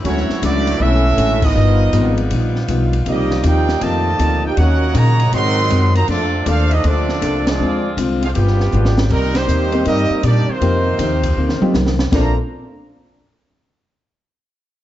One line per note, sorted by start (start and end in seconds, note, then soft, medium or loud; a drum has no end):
0.00 0.30 D3 medium
0.00 0.39 F#3 medium
0.00 0.39 A3 medium
0.00 0.39 C#4 medium
0.00 1.54 E4 medium
0.04 0.27 D2 medium
0.04 1.54 E3 medium
0.04 1.54 F#3 medium
0.04 0.31 G#3 medium
0.04 1.54 A3 medium
0.04 0.41 A3 medium
0.04 0.31 C#4 medium
0.04 0.40 E4 medium
0.04 0.40 F#4 medium
0.04 0.32 F#4 medium
0.04 0.40 C#5 loud
0.04 kick soft
0.04 ride medium
0.17 snare soft
0.29 muted upright bass stroke soft
0.29 snare medium
0.42 0.79 C#2 loud
0.42 0.68 D3 medium
0.42 0.80 F#3 medium
0.42 0.68 G#3 medium
0.42 0.79 A3 medium
0.42 0.81 A3 medium
0.42 0.69 C#4 medium
0.42 0.80 D4 medium
0.42 0.81 E4 medium
0.42 0.69 F#4 medium
0.42 0.81 F#4 medium
0.42 0.81 D5 loud
0.42 kick soft
0.42 hi-hat pedal medium
0.42 ride medium
0.67 ride medium
0.79 1.16 B1 medium
0.79 1.06 D3 medium
0.79 1.06 G#3 soft
0.79 1.42 A3 loud
0.79 1.42 C#4 loud
0.79 1.07 C#4 medium
0.79 1.43 C#4 loud
0.79 1.42 E4 loud
0.79 1.43 F#4 loud
0.79 1.07 F#4 medium
0.79 1.43 A4 loud
0.79 1.43 E5 loud
0.79 kick soft
1.17 1.54 A1 medium
1.17 1.43 D3 medium
1.17 1.44 G#3 medium
1.17 1.44 C#4 medium
1.17 1.45 F#4 medium
1.17 kick soft
1.17 hi-hat pedal medium
1.17 ride medium
1.42 2.18 F3 medium
1.42 2.18 B3 medium
1.42 2.19 B3 medium
1.42 2.18 D#4 medium
1.42 2.19 F4 medium
1.42 2.19 A#4 medium
1.42 2.19 D#5 loud
1.42 kick loud
1.42 crash medium
1.54 1.92 G1 medium
1.54 1.81 G2 medium
1.54 3.05 D#3 medium
1.54 1.82 F3 soft
1.54 3.04 G3 medium
1.54 3.05 B3 medium
1.54 1.82 B3 medium
1.54 1.83 D#4 medium
1.54 4.54 F4 medium
1.93 2.30 G#1 loud
1.93 2.19 G2 medium
1.93 2.19 F3 medium
1.93 2.20 B3 medium
1.93 2.20 D#4 medium
1.93 kick soft
1.93 hi-hat pedal medium
1.93 ride medium
2.17 ride medium
2.30 2.68 A#1 medium
2.30 2.57 G2 medium
2.30 2.57 F3 medium
2.30 2.58 B3 medium
2.30 2.58 D#4 medium
2.30 kick soft
2.30 ride medium
2.55 snare soft
2.68 3.05 B1 medium
2.68 2.95 G2 medium
2.68 2.95 F3 medium
2.68 2.96 B3 medium
2.68 2.96 D#4 medium
2.68 kick soft
2.68 hi-hat pedal medium
2.68 ride medium
2.93 ride medium
3.06 3.43 C2 medium
3.06 5.31 A#2 medium
3.06 3.32 C3 soft
3.06 3.33 F3 soft
3.06 3.42 G3 medium
3.06 3.42 A#3 medium
3.06 3.34 A#3 medium
3.06 3.43 A#3 medium
3.06 4.57 C4 medium
3.06 5.31 D#4 medium
3.06 3.42 D#4 medium
3.06 3.34 D#4 medium
3.06 3.43 G4 medium
3.06 3.43 D5 medium
3.06 3.43 D#5 loud
3.06 kick soft
3.06 ride medium
3.30 snare medium
3.43 3.81 D#2 loud
3.43 3.70 C3 medium
3.43 3.71 F3 medium
3.43 3.83 A#3 medium
3.43 3.71 A#3 medium
3.43 3.83 D#4 medium
3.43 3.71 D#4 medium
3.43 3.82 G4 medium
3.43 3.81 D5 medium
3.43 kick soft
3.43 hi-hat pedal medium
3.43 ride medium
3.48 3.84 D#4 medium
3.48 3.84 A#4 medium
3.48 3.84 G5 loud
3.68 snare medium
3.81 4.18 F2 medium
3.81 4.45 A#2 medium
3.81 4.08 C3 soft
3.81 4.45 D#3 loud
3.81 4.08 F3 soft
3.81 4.45 A3 medium
3.81 4.09 A#3 medium
3.81 4.09 D#4 medium
3.81 4.45 G4 medium
3.81 4.45 D5 medium
3.81 4.45 D#5 medium
3.81 4.45 A5 loud
3.81 kick soft
3.81 ride medium
4.18 4.56 D2 medium
4.18 4.45 C3 medium
4.18 4.46 F3 medium
4.18 4.46 A#3 medium
4.18 4.46 D#4 medium
4.18 kick soft
4.18 hi-hat pedal medium
4.18 ride medium
4.45 4.57 A#3 medium
4.45 4.57 D#4 medium
4.45 4.57 G4 medium
4.45 4.57 A#4 medium
4.45 4.57 D5 medium
4.45 4.58 G5 medium
4.57 4.94 D#2 medium
4.57 4.83 D#3 medium
4.57 4.94 A#3 medium
4.57 5.32 C#4 medium
4.57 4.84 C#4 soft
4.57 4.96 C#4 medium
4.57 4.96 D#4 medium
4.57 5.92 F#4 medium
4.57 4.96 F#4 medium
4.57 4.84 F#4 medium
4.57 4.96 A#4 medium
4.57 4.85 A#4 medium
4.57 4.96 C#5 medium
4.57 4.96 F#5 loud
4.57 kick soft
4.57 ride medium
4.94 5.31 A#2 loud
4.94 5.33 C#3 loud
4.94 5.21 D#3 medium
4.94 5.31 F#3 medium
4.94 5.33 A#3 loud
4.94 5.21 C#4 medium
4.94 5.22 F#4 medium
4.94 5.34 F#4 medium
4.94 5.22 A#4 medium
4.94 5.34 C#5 medium
4.94 5.33 D#5 loud
4.94 5.34 A#5 loud
4.94 kick soft
4.94 hi-hat pedal medium
4.94 ride medium
5.19 ride medium
5.32 5.69 G#2 medium
5.32 7.58 A#2 medium
5.32 5.92 C3 medium
5.32 5.91 D#3 loud
5.32 5.91 F#3 loud
5.32 5.59 G#3 soft
5.32 5.92 G#3 medium
5.32 5.92 C4 loud
5.32 5.59 C4 soft
5.32 5.60 F#4 medium
5.32 5.92 A#4 loud
5.32 5.60 A#4 medium
5.32 5.92 D#5 loud
5.32 5.92 F#5 medium
5.32 5.92 C6 loud
5.32 kick soft
5.32 ride medium
5.70 6.07 F#2 medium
5.70 5.97 G#3 medium
5.70 5.97 C4 medium
5.70 5.98 F#4 medium
5.70 5.98 A#4 medium
5.70 kick soft
5.70 hi-hat pedal medium
5.70 ride medium
5.94 6.08 D#3 medium
5.94 6.08 F#3 medium
5.94 6.08 A#3 medium
5.94 6.09 F#4 medium
5.94 6.09 C5 medium
5.94 6.09 D#5 medium
5.94 6.09 A#5 loud
5.94 ride medium
6.08 6.45 F2 medium
6.08 7.59 C3 medium
6.08 6.44 F3 medium
6.08 6.43 A3 medium
6.08 7.59 A3 medium
6.08 6.34 A#3 soft
6.08 6.44 C4 medium
6.08 6.44 D4 medium
6.08 7.58 D4 medium
6.08 6.35 D4 medium
6.08 6.44 F4 medium
6.08 6.44 A4 medium
6.08 6.35 A4 medium
6.08 6.36 C5 medium
6.08 6.44 D5 loud
6.08 kick soft
6.08 ride medium
6.46 6.83 D#2 loud
6.46 6.71 A3 medium
6.46 6.72 A#3 medium
6.46 6.71 D4 medium
6.46 6.73 D4 medium
6.46 6.72 D4 medium
6.46 6.71 F4 medium
6.46 6.72 A4 medium
6.46 6.73 A4 medium
6.46 6.72 C5 medium
6.46 6.74 C5 medium
6.46 6.72 F5 loud
6.46 kick soft
6.46 hi-hat pedal medium
6.46 ride medium
6.71 6.85 C4 medium
6.71 6.84 D#4 medium
6.71 6.86 F4 medium
6.71 6.85 A4 medium
6.71 6.85 D#5 loud
6.71 ride medium
6.84 7.21 D2 medium
6.84 7.46 F3 medium
6.84 7.47 A3 medium
6.84 7.10 A#3 soft
6.84 7.48 C4 medium
6.84 7.46 D4 medium
6.84 7.11 D4 medium
6.84 7.11 A4 medium
6.84 7.48 A4 medium
6.84 7.12 C5 medium
6.84 7.48 D5 medium
6.84 kick soft
6.84 ride medium
6.88 7.48 F4 medium
7.09 snare soft
7.21 7.58 C2 medium
7.21 7.48 A#3 medium
7.21 7.48 D4 medium
7.21 7.49 A4 medium
7.21 7.49 C5 medium
7.21 kick soft
7.21 hi-hat pedal medium
7.21 ride medium
7.47 7.94 F3 medium
7.47 7.94 G#3 medium
7.47 7.95 C4 medium
7.47 7.94 D4 medium
7.47 7.95 F4 medium
7.47 7.95 G#4 medium
7.47 7.95 D5 medium
7.47 snare loud
7.47 ride medium
7.59 7.96 D2 medium
7.59 7.85 D3 medium
7.59 8.35 D3 medium
7.59 7.86 G#3 medium
7.59 8.34 C4 medium
7.59 7.87 C4 medium
7.59 8.34 F4 medium
7.59 7.87 F4 medium
7.97 8.34 C2 loud
7.97 8.23 D3 medium
7.97 8.24 G#3 medium
7.97 8.24 C4 medium
7.97 8.24 F4 medium
7.97 kick soft
7.97 hi-hat pedal medium
7.97 ride medium
8.22 8.26 G#3 medium
8.22 8.26 C4 medium
8.22 8.28 D4 medium
8.22 8.26 F4 medium
8.22 8.28 G#4 medium
8.22 8.28 C5 medium
8.22 8.28 F5 medium
8.22 ride medium
8.33 8.72 G1 medium
8.33 9.09 F3 medium
8.33 8.61 G3 soft
8.33 9.10 B3 medium
8.33 8.97 B3 medium
8.33 8.61 B3 soft
8.33 8.97 D4 medium
8.33 8.98 F4 medium
8.33 8.62 F4 soft
8.33 9.09 G4 medium
8.33 8.97 G4 medium
8.33 8.98 B4 medium
8.33 8.98 D5 medium
8.33 8.37 F5 medium
8.33 8.98 G5 medium
8.33 kick soft
8.33 ride medium
8.38 8.63 G#4 medium
8.47 snare soft
8.60 snare medium
8.72 9.09 G#1 medium
8.72 9.08 B2 medium
8.72 9.08 D3 medium
8.72 8.99 G3 medium
8.72 9.08 G3 medium
8.72 8.99 B3 medium
8.72 9.09 B3 medium
8.72 9.09 D4 medium
8.72 9.00 F4 medium
8.72 9.09 G4 medium
8.72 9.00 G#4 medium
8.72 hi-hat pedal medium
8.85 snare medium
8.98 snare loud
9.10 9.47 C2 medium
9.10 9.36 C3 soft
9.10 9.36 D#3 medium
9.10 9.35 G3 medium
9.10 9.37 G3 medium
9.10 9.36 G3 medium
9.10 9.35 A#3 medium
9.10 9.37 A#3 medium
9.10 9.36 C4 medium
9.10 9.35 D#4 medium
9.10 9.38 D#4 medium
9.10 9.36 A#4 loud
9.10 kick medium
9.10 crash medium
9.35 9.87 D#3 medium
9.35 9.85 G3 medium
9.35 9.86 A#3 medium
9.35 9.87 C4 medium
9.35 9.87 D#4 medium
9.35 9.87 G4 medium
9.35 9.87 C5 loud
9.35 snare medium
9.35 ride medium
9.47 9.84 D#2 medium
9.47 9.74 C3 medium
9.47 9.74 G3 medium
9.47 9.75 A#3 medium
9.47 9.75 D#4 medium
9.47 hi-hat pedal medium
9.72 10.21 A#3 medium
9.72 10.21 C4 medium
9.72 10.21 D#4 medium
9.72 10.21 G4 medium
9.72 ride medium
9.85 10.09 G2 medium
9.85 10.12 C3 soft
9.85 10.21 G3 medium
9.85 10.12 G3 medium
9.85 10.21 A#3 loud
9.85 10.13 A#3 soft
9.85 10.22 C4 medium
9.85 10.21 D#4 medium
9.85 10.13 D#4 medium
9.85 10.22 G4 medium
9.85 10.22 A#4 medium
9.85 10.22 D#5 loud
9.85 kick soft
9.85 ride medium
10.10 muted upright bass stroke soft
10.23 10.46 A#2 medium
10.23 10.49 C3 medium
10.23 10.50 G3 medium
10.23 10.50 A#3 medium
10.23 10.49 A#3 medium
10.23 10.49 D4 medium
10.23 10.49 D#4 medium
10.23 10.51 D#4 medium
10.23 10.49 G4 medium
10.23 10.49 D5 loud
10.23 kick soft
10.23 hi-hat pedal medium
10.23 ride medium
10.48 11.74 C3 medium
10.48 11.74 D#3 medium
10.48 11.75 A#3 medium
10.48 11.74 C4 medium
10.48 11.75 D#4 medium
10.48 11.76 F4 medium
10.48 11.76 C5 medium
10.48 muted upright bass stroke soft
10.61 10.87 F2 medium
10.61 10.98 F2 medium
10.61 10.88 D#3 medium
10.61 11.19 A#3 medium
10.61 10.88 A#3 medium
10.61 11.19 C4 medium
10.61 10.88 C4 medium
10.61 11.19 D#4 medium
10.61 11.19 F4 medium
10.61 11.19 G4 medium
10.61 kick soft
10.61 ride medium
10.99 11.35 D#2 loud
10.99 11.25 F2 medium
10.99 11.26 D#3 medium
10.99 11.26 A#3 medium
10.99 11.26 C4 loud
10.99 kick soft
10.99 hi-hat pedal medium
10.99 ride medium
11.23 kick medium
11.23 ride medium
11.37 11.60 D2 medium
11.37 11.63 F2 medium
11.37 11.64 D#3 medium
11.37 11.64 A#3 medium
11.37 11.65 C4 medium
11.49 snare medium
11.61 11.73 A#3 medium
11.61 11.73 C4 medium
11.61 11.74 D#4 medium
11.61 11.74 F4 medium
11.61 11.74 G4 medium
11.61 muted upright bass stroke soft
11.61 high tom medium
11.74 12.11 C2 medium
11.74 12.00 F2 medium
11.74 12.00 D#3 medium
11.74 12.01 A#3 medium
11.74 12.01 C4 medium
11.74 snare medium
11.74 hi-hat pedal medium
11.87 snare medium
11.99 snare loud
12.12 12.35 A#1 loud
12.12 12.35 A#2 medium
12.12 12.35 F3 medium
12.12 12.35 A3 loud
12.12 12.34 A#3 medium
12.12 12.32 A#3 medium
12.12 12.34 C4 medium
12.12 12.35 D4 medium
12.12 12.32 D4 medium
12.12 12.35 F4 medium
12.12 12.36 F4 medium
12.12 12.35 A4 medium
12.12 12.33 A4 medium
12.12 12.36 C5 medium
12.12 12.33 C5 medium
12.12 12.36 D5 medium
12.12 12.36 A#5 medium
12.12 kick loud
12.12 snare loud
12.12 ride bell medium